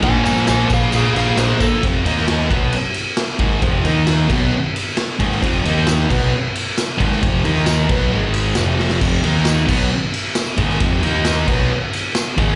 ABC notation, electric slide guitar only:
X:1
M:4/4
L:1/8
Q:1/4=134
K:Eblyd
V:1 name="Electric slide guitar"
[c_a] [ca] [ca] [_Af] [Af] [Af] [Ac] =A | z8 | z8 | z8 |
z8 | z8 | z8 |]